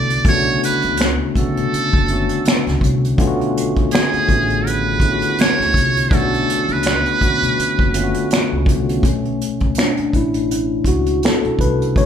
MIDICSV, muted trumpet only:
0, 0, Header, 1, 2, 480
1, 0, Start_track
1, 0, Tempo, 731707
1, 167, Time_signature, 4, 2, 24, 8
1, 7909, End_track
2, 0, Start_track
2, 0, Title_t, "Muted trumpet"
2, 0, Program_c, 0, 59
2, 0, Note_on_c, 0, 74, 97
2, 174, Note_off_c, 0, 74, 0
2, 186, Note_on_c, 0, 73, 104
2, 400, Note_off_c, 0, 73, 0
2, 426, Note_on_c, 0, 71, 85
2, 706, Note_off_c, 0, 71, 0
2, 903, Note_on_c, 0, 69, 89
2, 1829, Note_off_c, 0, 69, 0
2, 2578, Note_on_c, 0, 68, 89
2, 3067, Note_on_c, 0, 71, 94
2, 3077, Note_off_c, 0, 68, 0
2, 3544, Note_on_c, 0, 73, 102
2, 3554, Note_off_c, 0, 71, 0
2, 4028, Note_on_c, 0, 69, 94
2, 4038, Note_off_c, 0, 73, 0
2, 4411, Note_on_c, 0, 71, 92
2, 4421, Note_off_c, 0, 69, 0
2, 5702, Note_off_c, 0, 71, 0
2, 7909, End_track
0, 0, End_of_file